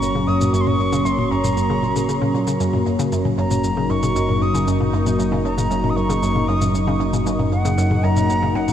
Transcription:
Already playing: analog synth bass F#1, analog synth pad F#3 A#3 C#4, flute C#6
0.02 synth arpeggio sound F#2, shaker
0.15 synth arpeggio sound C#3, high tom
0.27 synth arpeggio sound F#2, flute D#6
0.41 synth arpeggio sound F#2, high tom, shaker
0.53 synth arpeggio sound F#2, flute C#6, shaker
0.61 flute C6
0.66 synth arpeggio sound F#2, flute C#6, high tom
0.80 synth arpeggio sound F#2
0.92 synth arpeggio sound C#3, high tom, shaker
1.05 synth arpeggio sound F#2, flute C6, shaker
1.18 synth arpeggio sound F#2, high tom
1.31 synth arpeggio sound F#2, flute A#5
1.44 synth arpeggio sound F#2, high tom, shaker
1.57 synth arpeggio sound F#2, shaker
1.70 synth arpeggio sound C#3, high tom
1.83 synth arpeggio sound A#2
1.96 synth arpeggio sound C#3, high tom, shaker
2.09 synth arpeggio sound C#3, shaker
2.22 synth arpeggio sound C#3, high tom
2.34 synth arpeggio sound A#2
2.47 synth arpeggio sound C#3, high tom, shaker
2.60 analog synth bass F#1, synth arpeggio sound F#2, shaker
2.73 synth arpeggio sound F#2, high tom
2.87 synth arpeggio sound F#2
2.99 synth arpeggio sound C#3, high tom, shaker
3.12 synth arpeggio sound F#2, shaker
3.25 synth arpeggio sound C#3, high tom
3.38 synth arpeggio sound F#2, flute A#5
3.51 synth arpeggio sound F#2, high tom, shaker
3.60 analog synth pad D#4, shaker
3.64 synth arpeggio sound F#2
3.77 synth arpeggio sound C#3, high tom
3.90 synth arpeggio sound F#2, flute C#6
4.03 synth arpeggio sound C#3, high tom, shaker
4.16 synth arpeggio sound F#2, shaker
4.29 synth arpeggio sound F#2, high tom
4.41 synth arpeggio sound F#2, flute D#6
4.54 synth arpeggio sound C#3, high tom, shaker
4.67 synth arpeggio sound F#2, shaker
4.80 synth arpeggio sound C#3, high tom
4.93 synth arpeggio sound F#2
5.06 synth arpeggio sound F#2, high tom, shaker
5.19 synth arpeggio sound F#2, shaker
5.32 synth arpeggio sound C#3, high tom
5.45 synth arpeggio sound F#2, flute A#5
5.58 synth arpeggio sound C#3, high tom, shaker
5.71 synth arpeggio sound F#2, shaker
5.84 synth arpeggio sound F#2, high tom
5.90 flute D#6
5.96 synth arpeggio sound F#2, flute C#6
6.10 synth arpeggio sound C#3, high tom, shaker
6.23 synth arpeggio sound F#2, shaker
6.36 synth arpeggio sound C#3, high tom
6.48 synth arpeggio sound F#2, flute D#6
6.62 synth arpeggio sound F#2, high tom, shaker
6.74 synth arpeggio sound F#2, shaker
6.87 synth arpeggio sound C#3, high tom
7.00 synth arpeggio sound F#2
7.13 synth arpeggio sound C#3, high tom, shaker
7.26 synth arpeggio sound F#2, shaker
7.39 synth arpeggio sound F#2, high tom
7.52 synth arpeggio sound F#2, flute F#5
7.65 synth arpeggio sound C#3, high tom, shaker
7.78 synth arpeggio sound F#2, shaker
7.91 synth arpeggio sound C#3, high tom
8.04 synth arpeggio sound F#2, flute A#5
8.17 synth arpeggio sound F#2, high tom, shaker
8.29 synth arpeggio sound F#2, shaker
8.42 synth arpeggio sound C#3, high tom
8.55 synth arpeggio sound F#2, flute F#5
8.68 synth arpeggio sound C#3, high tom, shaker

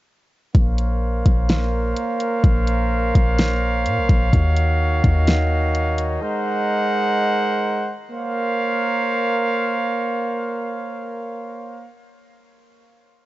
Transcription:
0.55 808-style bass A#1, brass ensemble A#3 A#4 C5 C#5 F5, kick, closed hi-hat
0.78 closed hi-hat
1.26 808-style bass A#1, kick, closed hi-hat
1.49 snare, closed hi-hat
1.97 closed hi-hat
2.20 closed hi-hat
2.44 808-style bass A#1, kick, closed hi-hat
2.67 closed hi-hat
3.15 808-style bass A#1, kick, closed hi-hat
3.38 snare, closed hi-hat
3.86 808-style bass A#2, closed hi-hat
3.97 808-style bass A#1
4.09 808-style bass A#1, kick, closed hi-hat
4.33 808-style bass D#2, brass ensemble D#3 D#4 F#4, kick, closed hi-hat
4.56 closed hi-hat
5.04 808-style bass D#2, kick, closed hi-hat
5.27 snare, closed hi-hat
5.75 closed hi-hat
5.98 closed hi-hat
6.22 brass ensemble G#3 A#4 C5 F#5
8.11 brass ensemble A#3 A#4 C5 C#5 F5

